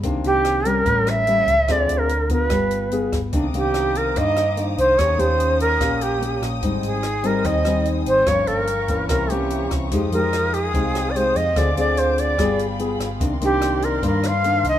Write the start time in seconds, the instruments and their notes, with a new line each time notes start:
0.03 fingered electric bass C2, nylon-string guitar C3 D#3 A#3 D4, kick, closed hi-hat
0.24 fingered electric bass C2, shakuhachi G4, closed hi-hat
0.45 cross-stick, closed hi-hat
0.65 nylon-string guitar G3 C#4, shakuhachi A#4, closed hi-hat
0.86 fingered electric bass A1, nylon-string guitar A2, kick, closed hi-hat
1.07 shakuhachi E5, cross-stick, closed hi-hat
1.27 nylon-string guitar G3 A#3 C#4, closed hi-hat
1.47 fingered electric bass C#2, closed hi-hat
1.68 fingered electric bass D2, nylon-string guitar D3 C4 F4 G#4, shakuhachi D5, kick, cross-stick, closed hi-hat
1.89 fingered electric bass D2, closed hi-hat
1.98 shakuhachi A#4
2.09 closed hi-hat
2.29 nylon-string guitar B3 F4, shakuhachi B4, kick, closed hi-hat
2.50 fingered electric bass G1, nylon-string guitar G3, kick, cross-stick, closed hi-hat
2.71 closed hi-hat
2.91 nylon-string guitar B3 F4 G#4, closed hi-hat
3.12 fingered electric bass G1, kick, cross-stick, closed hi-hat
3.33 fingered electric bass C2, nylon-string guitar C3 D#3 A#3 D4, string section C5 A#5 D6 D#6, kick, closed hi-hat
3.54 fingered electric bass C2, nylon-string guitar D#3 A#3 D4, shakuhachi G4, closed hi-hat
3.74 cross-stick, closed hi-hat
3.95 shakuhachi A#4, closed hi-hat
4.16 fingered electric bass G2, nylon-string guitar G2 D#3 A#3 D4, shakuhachi D#5, kick, closed hi-hat
4.36 cross-stick, closed hi-hat
4.56 nylon-string guitar D#3 A#3 D4, closed hi-hat
4.77 fingered electric bass C2, shakuhachi C5, closed hi-hat
4.98 fingered electric bass D#2, nylon-string guitar D#3 A#3 C#4 G4, string section C#4 G5 A#5, shakuhachi C#5, kick, cross-stick, closed hi-hat
5.18 fingered electric bass D#2, nylon-string guitar A#3 C#4 G4, shakuhachi C5, closed hi-hat
5.40 closed hi-hat
5.60 shakuhachi A#4, closed hi-hat
5.80 fingered electric bass A#1, nylon-string guitar A#2 A#3 C#4 G4, kick, cross-stick, closed hi-hat
6.01 shakuhachi G4, closed hi-hat
6.21 nylon-string guitar A#3 C#4 G4, closed hi-hat
6.42 fingered electric bass A#1, cross-stick, closed hi-hat
6.62 fingered electric bass G#1, nylon-string guitar G#2 G3 C4 D#4, string section C5 G#5, kick, closed hi-hat
6.83 fingered electric bass G#1, shakuhachi G#4, closed hi-hat
7.03 cross-stick, closed hi-hat
7.23 nylon-string guitar G3 C4 D#4, shakuhachi A#4, closed hi-hat
7.44 fingered electric bass D#2, nylon-string guitar D#3, shakuhachi D#5, kick, closed hi-hat
7.65 nylon-string guitar G3 C4 D#4, cross-stick, closed hi-hat
7.85 closed hi-hat
8.06 fingered electric bass G#1, shakuhachi C5, closed hi-hat
8.26 fingered electric bass G1, nylon-string guitar G2 F3 A#3 C#4, string section A#4 F5 G5 C#6, shakuhachi C#5, kick, cross-stick, closed hi-hat
8.47 fingered electric bass G1, shakuhachi A#4, closed hi-hat
8.67 closed hi-hat
8.88 nylon-string guitar E3 A#3 C#4, kick, closed hi-hat
9.08 fingered electric bass C2, nylon-string guitar C3, shakuhachi A#4, string section C5 E5 A#5 C#6, kick, cross-stick, closed hi-hat
9.30 nylon-string guitar E3 A#3 C#4, shakuhachi G4, closed hi-hat
9.50 closed hi-hat
9.71 fingered electric bass C2, kick, cross-stick, closed hi-hat
9.91 fingered electric bass F2, nylon-string guitar F3 G#3 D#4 G4, string section F5 G5 D#6, kick, closed hi-hat
10.12 fingered electric bass F2, nylon-string guitar G#3 D#4 G4, shakuhachi A#4, closed hi-hat
10.33 cross-stick, closed hi-hat
10.54 shakuhachi G#4, closed hi-hat
10.74 fingered electric bass C2, nylon-string guitar C3 G#3 D#4, kick, closed hi-hat
10.95 cross-stick, closed hi-hat
11.10 shakuhachi D5
11.15 nylon-string guitar G#3 D#4 G4, shakuhachi C5, closed hi-hat
11.35 fingered electric bass F2, shakuhachi D#5, closed hi-hat
11.55 fingered electric bass D2, nylon-string guitar D3 C4 F4 G#4, string section C5 G#5 D6, shakuhachi D5, kick, cross-stick, closed hi-hat
11.76 fingered electric bass D2, nylon-string guitar C4 F4 G#4, shakuhachi D5, closed hi-hat
11.97 shakuhachi C5, closed hi-hat
12.18 shakuhachi D5, closed hi-hat
12.38 fingered electric bass G1, nylon-string guitar G3 B3 F4 G#4, string section G#4 F5 G5 B5, kick, cross-stick, closed hi-hat
12.59 closed hi-hat
12.79 nylon-string guitar B3 F4 G#4, closed hi-hat
12.99 fingered electric bass G1, cross-stick, closed hi-hat
13.20 fingered electric bass C2, nylon-string guitar C3 D#3 A#3 D4, string section A#4 C5 D5 C6, kick, closed hi-hat
13.40 fingered electric bass C2, nylon-string guitar D#3 A#3 D4, closed hi-hat
13.44 shakuhachi G4
13.61 cross-stick, closed hi-hat
13.82 shakuhachi A#4, closed hi-hat
14.03 fingered electric bass G2, nylon-string guitar G2 D#3 A#3 D4, shakuhachi A#4, kick, closed hi-hat
14.23 shakuhachi F5, cross-stick, closed hi-hat
14.44 nylon-string guitar D#3 A#3 D4, closed hi-hat
14.64 fingered electric bass C2, closed hi-hat
14.68 shakuhachi D#5